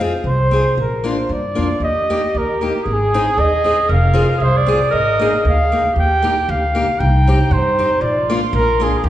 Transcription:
0.00 C4 F4 G#4
0.24 C2 C5
0.51 C4 F4 G#4
0.77 A#1 A#4
1.04 A#3 D4 F4
1.08 C5
1.29 G2 D5
1.55 F2 A#3 D4 F4
1.80 D#2 G4 D#5
2.10 A#3 D#4 G4
2.35 D#2 A#4
2.61 A#3 D#4 G4
2.68 A#4
2.83 G#1 G#4
2.93 G#4
3.14 C4 D#4 G#4
3.37 D#2 D#5
3.64 C4 D#4 G#4
3.89 F1 A#4 F5
4.14 C4 F4 G#4
4.38 C2 G#4
4.43 C5
4.57 D5
4.66 C4 F4 G#4
4.90 G#1 A#4 D#5
5.19 A#3 D#4 G#4
5.44 D2 G#4
5.49 F5
5.72 A#3 D#4 G#4
5.92 D#2 G4
6.00 G5
6.22 A#3 D#4 G4
6.49 D2 F5
6.75 A#3 D#4 G4
6.98 C2 D#4 G5
7.27 C4 D#4 G4
7.51 G2 C5
7.79 C4 D#4 G4
8.01 A#1 F4 D5
8.30 A#3 D4 F4
8.53 A#1 A#4
8.80 A#3 D4 F4 G#4
8.97 G#4
9.04 D#2 G4

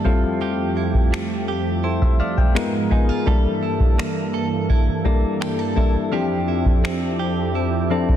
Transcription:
Already playing: A#3 E4 A4
0.04 F2 F3 G3 A3 C4 E4 F4 G4 A4, kick
0.41 F3 G4
0.77 E4
0.94 kick
1.12 A3, finger snap
1.48 G4
1.84 E4 A4 C5
2.02 C5 E5, kick
2.20 A3 D5 F5
2.38 E5 G5, kick
2.55 G#2 F3 G#3 B3 D#4 F4 A#4, finger snap
2.90 G#3 B3 D#4 F4 G#4, kick
3.09 F4
3.26 G2 E3 G3 A#3 D4 E4 A4, kick
3.63 E4
3.80 kick
3.98 A#3, finger snap
4.34 A4
4.70 E4, kick
5.04 G3 A#3 D4 E4 A4, kick
5.41 G4, finger snap
5.59 A4
5.76 G3 A#3 D4 E4 A4, kick
6.11 F2 F3 C4 D4 E4 G4
6.48 E4
6.66 kick
6.84 C4, finger snap
7.19 G4
7.55 E4
7.90 F3 C4 D4 E4 A4
8.09 kick

